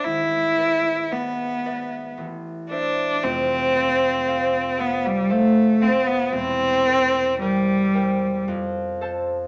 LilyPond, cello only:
\new Staff \with { instrumentName = "Cello" } { \time 3/4 \key f \lydian \tempo 4 = 57 e'4 b4 r8 d'8 | c'4. b16 g16 a8 c'16 b16 | c'4 g4 r4 | }